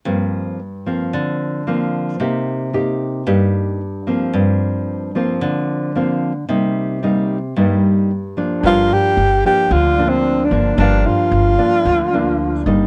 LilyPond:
<<
  \new Staff \with { instrumentName = "Grand piano" } { \time 4/4 \key g \minor \tempo 4 = 112 r1 | r1 | r1 | r1 |
<d' g' bes' f''>1 | <d' g' bes' f''>1 | }
  \new Staff \with { instrumentName = "Alto saxophone" } { \time 4/4 \key g \minor r1 | r1 | r1 | r1 |
f'8 g'4 g'8 \tuplet 3/2 { f'4 c'8~ c'8 d'4 } | d'8 f'2. r8 | }
  \new Staff \with { instrumentName = "Nylon-string guitar" } { \time 4/4 \key g \minor << { <f bes c'>4 r8 <f bes c'>4. <f bes c'>4 | <bes ees' g'>4 <bes ees' g'>4 <bes ees' g'>4 r8 <f bes c'>8~ | <f bes c'>4. <f bes c'>4. <f bes c'>8 r8 | <g bes ees'>4 <g bes ees'>8 r8 <g bes ees'>4 r8 <f bes d'>8~ |
<f bes d'>4 r8 <f bes d'>4 <f bes d'>4 <f bes d'>8 | <f bes d'>4. <f bes d'>4 <f bes d'>4 <g bes ees'>8 | } \\ { g,2 d2 | c2 g,2 | g,2 d2 | c2 g,2 |
g,2 d2 | g,2 d2 | } >> }
  \new Staff \with { instrumentName = "Upright bass" } { \clef bass \time 4/4 \key g \minor r1 | r1 | r1 | r1 |
g,,8 r8 g,,8 r8 d,4. g,,8 | g,,8 r8 g,,8 r8 d,4. g,,8 | }
>>